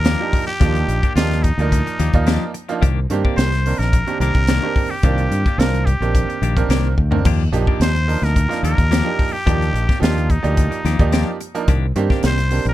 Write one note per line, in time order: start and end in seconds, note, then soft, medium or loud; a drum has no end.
0.00 0.15 D#2 medium
0.00 0.43 A#4 loud
0.05 0.22 F3 medium
0.05 0.22 A#3 medium
0.05 0.22 D4 medium
0.05 0.22 G4 medium
0.05 snare loud
0.05 closed hi-hat medium
0.20 0.46 F3 medium
0.20 0.46 A#3 medium
0.20 0.46 D4 medium
0.20 0.46 D#4 medium
0.20 0.46 G4 medium
0.33 muted clean electric guitar stroke soft
0.33 kick medium
0.33 open hi-hat medium
0.47 1.12 G4 medium
0.47 muted clean electric guitar stroke soft
0.60 0.84 D#2 loud
0.60 0.77 F3 medium
0.60 0.97 F3 medium
0.60 0.77 A#3 medium
0.60 0.97 A#3 medium
0.60 0.77 D4 medium
0.60 0.97 D4 medium
0.60 0.97 D#4 medium
0.60 0.78 G4 medium
0.60 0.97 G4 medium
0.60 kick loud
0.60 closed hi-hat medium
0.75 closed hi-hat soft
0.88 1.00 A#1 medium
0.88 muted clean electric guitar stroke soft
0.88 closed hi-hat medium
1.03 1.16 A#3 soft
1.03 1.16 D4 soft
1.03 1.16 G4 medium
1.03 kick medium
1.03 closed hi-hat soft
1.16 1.51 D#2 medium
1.16 1.43 F3 medium
1.16 1.43 A#3 medium
1.16 1.43 D4 medium
1.16 1.43 D#4 medium
1.16 1.45 F4 medium
1.16 1.43 G4 medium
1.16 snare loud
1.16 closed hi-hat medium
1.31 muted clean electric guitar stroke soft
1.31 snare soft
1.31 closed hi-hat soft
1.43 2.54 D#4 medium
1.43 kick medium
1.43 closed hi-hat medium
1.58 1.81 D2 medium
1.58 1.94 F3 medium
1.58 1.94 A#3 medium
1.58 1.94 D#4 medium
1.58 1.95 A#4 medium
1.58 1.94 D5 medium
1.58 muted clean electric guitar stroke soft
1.58 closed hi-hat soft
1.72 kick medium
1.72 closed hi-hat medium
1.87 muted clean electric guitar stroke soft
1.87 closed hi-hat soft
1.99 2.11 D#2 medium
1.99 2.13 F3 medium
1.99 2.13 A#3 medium
1.99 2.13 D4 medium
1.99 2.12 G4 medium
1.99 closed hi-hat medium
2.13 2.37 D#2 medium
2.13 2.49 F3 medium
2.13 2.49 A#3 medium
2.13 2.49 D#4 medium
2.13 2.49 F4 medium
2.13 2.49 D5 medium
2.13 muted clean electric guitar stroke soft
2.13 kick medium
2.13 closed hi-hat soft
2.27 2.44 F3 medium
2.27 2.44 A#3 medium
2.27 2.44 D4 medium
2.27 2.44 G4 medium
2.27 snare medium
2.27 closed hi-hat medium
2.54 muted clean electric guitar stroke soft
2.54 closed hi-hat medium
2.69 2.82 F3 medium
2.69 2.82 A#3 medium
2.69 2.83 D4 medium
2.69 2.83 D#4 medium
2.69 2.82 F4 medium
2.69 muted clean electric guitar stroke soft
2.69 closed hi-hat soft
2.81 3.05 C2 loud
2.81 2.99 D#3 medium
2.81 2.99 A#3 medium
2.81 2.99 D4 medium
2.81 2.99 G4 medium
2.81 kick loud
2.81 closed hi-hat medium
3.10 3.22 G2 medium
3.10 3.46 D#3 medium
3.10 3.46 A#3 medium
3.10 3.46 C4 medium
3.10 3.46 D4 medium
3.10 3.46 G4 medium
3.10 muted clean electric guitar stroke soft
3.10 closed hi-hat medium
3.24 3.37 A#3 soft
3.24 3.38 D4 soft
3.24 3.37 G4 medium
3.24 muted fingered electric bass stroke soft
3.24 kick medium
3.37 3.72 C2 medium
3.37 3.80 C5 medium
3.37 muted clean electric guitar stroke soft
3.37 snare loud
3.37 closed hi-hat medium
3.52 muted clean electric guitar stroke soft
3.52 snare soft
3.52 closed hi-hat soft
3.66 3.92 D#3 medium
3.66 3.93 A#3 medium
3.66 3.92 C4 medium
3.66 3.92 D4 medium
3.66 3.93 A#4 medium
3.66 open hi-hat medium
3.78 4.02 A#1 medium
3.78 4.20 A#4 medium
3.78 muted clean electric guitar stroke soft
3.78 snare soft
3.78 closed hi-hat soft
3.93 kick medium
3.93 closed hi-hat medium
4.07 4.42 D#3 medium
4.07 4.42 A#3 medium
4.07 4.42 C4 medium
4.07 4.42 D4 medium
4.07 4.42 G4 medium
4.07 muted clean electric guitar stroke soft
4.07 closed hi-hat soft
4.20 4.32 C2 medium
4.20 4.35 D#3 medium
4.20 4.35 A#3 medium
4.20 4.35 D4 medium
4.20 4.34 G4 medium
4.20 4.92 A#4 loud
4.20 closed hi-hat medium
4.35 4.58 C2 medium
4.35 muted clean electric guitar stroke soft
4.35 kick medium
4.35 closed hi-hat soft
4.47 4.66 D#3 medium
4.47 4.66 A#3 medium
4.47 4.66 D4 medium
4.47 4.66 G4 medium
4.47 snare loud
4.47 closed hi-hat medium
4.63 4.89 D#3 medium
4.63 4.89 A#3 medium
4.63 4.90 C4 medium
4.63 4.89 D4 medium
4.63 4.89 G4 medium
4.75 muted clean electric guitar stroke soft
4.75 kick medium
4.75 open hi-hat medium
4.91 5.60 G4 medium
4.91 muted clean electric guitar stroke soft
5.03 5.27 C2 medium
5.03 5.21 D#3 medium
5.03 5.39 D#3 medium
5.03 5.21 A#3 medium
5.03 5.40 A#3 medium
5.03 5.40 C4 medium
5.03 5.21 D4 medium
5.03 5.40 D4 medium
5.03 5.39 F4 medium
5.03 5.21 G4 medium
5.03 kick loud
5.03 closed hi-hat medium
5.18 closed hi-hat soft
5.31 5.43 G2 medium
5.31 muted clean electric guitar stroke soft
5.31 closed hi-hat medium
5.46 5.59 A#3 soft
5.46 5.59 D4 soft
5.46 5.59 G4 medium
5.46 muted fingered electric bass stroke soft
5.46 kick medium
5.46 closed hi-hat soft
5.58 5.93 C2 medium
5.58 5.85 D#3 medium
5.58 5.85 A#3 medium
5.58 5.85 C4 medium
5.58 5.85 D4 medium
5.58 5.86 F4 medium
5.58 5.87 A#4 medium
5.58 snare loud
5.58 closed hi-hat medium
5.74 muted clean electric guitar stroke soft
5.74 closed hi-hat soft
5.86 6.97 G4 medium
5.86 kick medium
5.86 closed hi-hat medium
6.00 6.24 A#1 medium
6.00 6.36 D#3 medium
6.00 6.37 A#3 medium
6.00 6.37 C4 medium
6.00 6.37 D4 medium
6.00 6.37 G4 medium
6.00 muted clean electric guitar stroke soft
6.00 closed hi-hat soft
6.15 kick medium
6.15 closed hi-hat medium
6.29 muted clean electric guitar stroke soft
6.29 closed hi-hat soft
6.42 6.67 A#1 medium
6.42 6.57 D#3 medium
6.42 6.56 A#3 medium
6.42 6.56 D4 medium
6.42 6.55 G4 medium
6.42 closed hi-hat medium
6.57 6.92 D#3 medium
6.57 6.92 A#3 medium
6.57 6.92 C4 medium
6.57 6.92 D4 medium
6.57 6.92 A#4 medium
6.57 muted clean electric guitar stroke soft
6.57 kick medium
6.57 closed hi-hat soft
6.69 6.94 C2 medium
6.69 6.87 D#3 medium
6.69 6.87 A#3 medium
6.69 6.87 D4 medium
6.69 6.87 G4 medium
6.69 snare medium
6.69 closed hi-hat medium
6.98 7.23 D2 medium
6.98 muted clean electric guitar stroke soft
6.98 kick medium
7.11 7.25 D#3 medium
7.11 7.25 A#3 medium
7.11 7.25 C4 medium
7.11 7.25 D4 medium
7.11 7.25 A#4 medium
7.11 muted clean electric guitar stroke soft
7.11 floor tom medium
7.25 7.48 D#2 medium
7.25 7.43 F3 medium
7.25 7.43 A#3 medium
7.25 7.43 D4 medium
7.25 7.43 G4 loud
7.25 kick loud
7.25 closed hi-hat medium
7.25 crash medium
7.52 7.65 A#1 medium
7.52 7.88 F3 medium
7.52 7.88 A#3 medium
7.52 7.88 D4 medium
7.52 7.88 D#4 medium
7.52 7.88 G4 medium
7.52 muted clean electric guitar stroke soft
7.52 closed hi-hat medium
7.67 7.81 A#3 soft
7.67 7.80 D4 soft
7.67 7.81 G4 soft
7.67 kick medium
7.80 8.15 D#2 medium
7.80 8.26 C5 medium
7.80 snare loud
7.80 closed hi-hat medium
7.95 muted clean electric guitar stroke soft
7.95 closed hi-hat soft
8.08 8.35 F3 medium
8.08 8.35 A#3 medium
8.08 8.35 D4 medium
8.08 8.35 D#4 medium
8.08 8.35 A#4 medium
8.08 open hi-hat medium
8.22 8.45 D2 medium
8.22 8.64 A#4 medium
8.22 muted clean electric guitar stroke soft
8.22 snare soft
8.22 closed hi-hat soft
8.36 kick medium
8.36 closed hi-hat medium
8.49 8.84 F3 medium
8.49 8.85 A#3 medium
8.49 8.85 D4 medium
8.49 8.85 D#4 medium
8.49 8.85 F4 medium
8.49 muted clean electric guitar stroke soft
8.49 snare soft
8.49 closed hi-hat soft
8.63 8.75 D#2 medium
8.63 8.78 F3 medium
8.63 8.77 A#3 medium
8.63 8.77 D4 medium
8.63 8.77 G4 medium
8.63 9.34 A#4 loud
8.63 closed hi-hat medium
8.78 9.01 D#2 medium
8.78 muted clean electric guitar stroke soft
8.78 kick medium
8.78 closed hi-hat soft
8.91 9.08 F3 medium
8.91 9.08 A#3 medium
8.91 9.09 D4 medium
8.91 9.09 G4 medium
8.91 snare loud
8.91 closed hi-hat medium
9.04 9.31 F3 medium
9.04 9.31 A#3 medium
9.04 9.32 D4 medium
9.04 9.32 D#4 medium
9.04 9.32 G4 medium
9.19 muted clean electric guitar stroke soft
9.19 kick medium
9.19 open hi-hat medium
9.32 10.01 G4 medium
9.32 muted clean electric guitar stroke soft
9.46 9.70 D#2 medium
9.46 9.82 F3 medium
9.46 9.63 F3 medium
9.46 9.64 A#3 medium
9.46 9.82 A#3 medium
9.46 9.82 D4 medium
9.46 9.64 D4 medium
9.46 9.83 D#4 medium
9.46 9.82 G4 medium
9.46 9.64 G4 medium
9.46 kick loud
9.46 closed hi-hat medium
9.62 closed hi-hat soft
9.73 9.86 A#1 medium
9.73 muted clean electric guitar stroke soft
9.73 closed hi-hat medium
9.88 10.00 A#3 soft
9.88 10.01 D4 soft
9.88 10.01 G4 soft
9.88 muted fingered electric bass stroke soft
9.88 kick medium
9.88 snare soft
9.88 closed hi-hat soft
10.00 10.37 D#2 medium
10.00 10.28 F3 medium
10.00 10.28 A#3 medium
10.00 10.28 D4 medium
10.00 10.28 D#4 medium
10.00 10.32 F4 medium
10.00 10.27 G4 medium
10.00 muted clean electric guitar stroke soft
10.00 closed hi-hat medium
10.04 snare loud
10.15 muted clean electric guitar stroke soft
10.15 closed hi-hat soft
10.30 11.41 D#4 medium
10.30 kick medium
10.30 closed hi-hat medium
10.43 10.67 D2 medium
10.43 10.78 F3 medium
10.43 10.78 A#3 medium
10.43 10.78 D#4 medium
10.43 10.79 G4 medium
10.43 10.78 D5 medium
10.43 muted clean electric guitar stroke soft
10.43 closed hi-hat soft
10.57 kick medium
10.57 closed hi-hat medium
10.71 muted clean electric guitar stroke soft
10.71 closed hi-hat soft
10.85 10.97 D#2 medium
10.85 10.99 F3 medium
10.85 10.99 A#3 medium
10.85 10.99 D4 medium
10.85 10.98 G4 medium
10.85 snare soft
10.85 closed hi-hat medium
10.99 11.22 D#2 medium
10.99 11.35 F3 medium
10.99 11.34 A#3 medium
10.99 11.35 D#4 medium
10.99 11.35 G4 medium
10.99 11.34 D5 medium
10.99 muted clean electric guitar stroke soft
10.99 kick medium
10.99 closed hi-hat soft
11.12 11.29 F3 medium
11.12 11.30 A#3 medium
11.12 11.30 D4 medium
11.12 11.30 G4 medium
11.12 snare loud
11.12 closed hi-hat medium
11.41 muted clean electric guitar stroke soft
11.41 closed hi-hat medium
11.55 11.68 F3 medium
11.55 11.68 A#3 medium
11.55 11.68 D4 medium
11.55 11.68 D#4 medium
11.55 11.68 A#4 medium
11.55 muted clean electric guitar stroke soft
11.55 closed hi-hat soft
11.68 11.91 C2 medium
11.68 11.85 D#3 medium
11.68 11.85 A#3 medium
11.68 11.85 D4 medium
11.68 11.86 G4 medium
11.68 kick loud
11.68 closed hi-hat medium
11.96 12.08 G2 medium
11.96 12.31 D#3 medium
11.96 12.31 A#3 medium
11.96 12.31 C4 medium
11.96 12.31 D4 medium
11.96 12.31 G4 loud
11.96 muted clean electric guitar stroke soft
11.96 closed hi-hat medium
12.10 12.22 A#3 soft
12.10 12.22 D4 medium
12.10 12.23 G4 medium
12.10 muted fingered electric bass stroke soft
12.10 kick medium
12.10 snare soft
12.23 12.58 C2 medium
12.23 12.64 C5 medium
12.23 muted clean electric guitar stroke soft
12.23 snare loud
12.23 closed hi-hat medium
12.38 muted clean electric guitar stroke soft
12.38 snare soft
12.38 closed hi-hat soft
12.51 12.74 D#3 medium
12.51 12.74 A#3 medium
12.51 12.74 C4 medium
12.51 12.74 D4 medium
12.51 12.74 G4 medium
12.51 open hi-hat medium
12.65 12.74 A#1 medium
12.65 12.74 A#4 medium
12.65 muted clean electric guitar stroke soft
12.65 closed hi-hat soft